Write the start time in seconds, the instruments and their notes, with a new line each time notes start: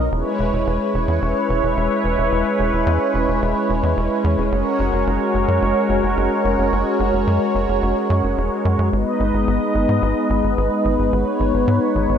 0.11 analog synth bass E1, analog synth pad G#3 C#4 E4 B4 C#5
0.39 analog synth bass E1
0.53 analog synth bass E1
0.67 analog synth bass E1
0.94 analog synth bass E1
1.08 analog synth bass E2
1.22 analog synth bass E1
1.49 analog synth bass E1
1.63 analog synth bass E1
1.77 analog synth bass E1
2.04 analog synth bass E1
2.18 analog synth bass E1
2.32 analog synth bass E1
2.59 analog synth bass E1
2.73 analog synth bass E1
2.87 analog synth bass E2
3.14 analog synth bass E1
3.28 analog synth bass E1
3.42 analog synth bass E1
3.69 analog synth bass E1
3.83 analog synth bass E2
3.97 analog synth bass E1
4.24 analog synth bass E2
4.38 analog synth bass E1
4.52 analog synth bass F#1, analog synth pad F#4 A#4 C#5
4.79 analog synth bass F#1
4.93 analog synth bass F#1
5.07 analog synth bass F#1
5.34 analog synth bass F#1
5.48 analog synth bass F#2
5.62 analog synth bass F#1
5.89 analog synth bass F#1
6.03 analog synth bass F#1
6.17 analog synth bass F#1
6.45 analog synth bass F#1
6.58 analog synth bass F#1
6.72 analog synth bass F#1
7.00 analog synth bass F#1
7.13 analog synth bass F#1
7.27 analog synth bass F#2
7.55 analog synth bass F#1
7.68 analog synth bass F#1
7.82 analog synth bass F#1
8.10 analog synth bass F#2
8.24 analog synth bass F#1
8.37 analog synth bass E1
8.65 analog synth bass F#2
8.79 analog synth bass F#2
8.92 analog synth bass G#1, analog synth pad B3 D#4 B4 D#5
9.20 analog synth bass G#1
9.34 analog synth bass G#1
9.47 analog synth bass G#1
9.75 analog synth bass G#1
9.89 analog synth bass G#2
10.02 analog synth bass G#1
10.30 analog synth bass G#1
10.44 analog synth bass G#1
10.57 analog synth bass G#1
10.85 analog synth bass G#1
10.99 analog synth bass G#1
11.12 analog synth bass G#1, analog synth pad C#5
11.40 analog synth bass G#1
11.54 analog synth bass G#1
11.68 analog synth bass G#2
11.95 analog synth bass G#1
12.09 analog synth bass G#1